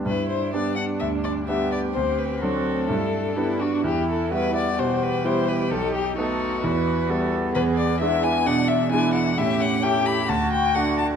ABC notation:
X:1
M:4/4
L:1/8
Q:1/4=129
K:G
V:1 name="Violin"
B c d f e d e d | c B A4- A F | G A B d c B c B | A G F4- F z |
B d e ^g f e g f | e f g b a g f a |]
V:2 name="Cello"
E2 D4 G2- | G2 F2 E2 D2 | E4 G4- | G2 A2 B2 A2 |
^G2 E2 D2 B,2 | ^C2 E2 F4 |]
V:3 name="Violin"
D6 B,2 | C4 D2 E D | E2 F4 E2 | ^D2 D2 E2 B,2- |
B,2 B,2 D2 E2 | G2 G2 F2 D2 |]
V:4 name="Grand piano"
G,,2 [G,B,D]2 D,,2 [G,B,D]2 | D,,2 [F,CD]2 G,,2 [G,B,D]2 | E,,2 [G,B,E]2 B,,2 [G,B,E]2 | B,,,2 [A,B,^D]2 E,,2 [G,B,E]2 |
E,,2 [^G,DE]2 B,,2 [G,DE]2 | A,,2 [A,^CG]2 D,,2 [A,DF]2 |]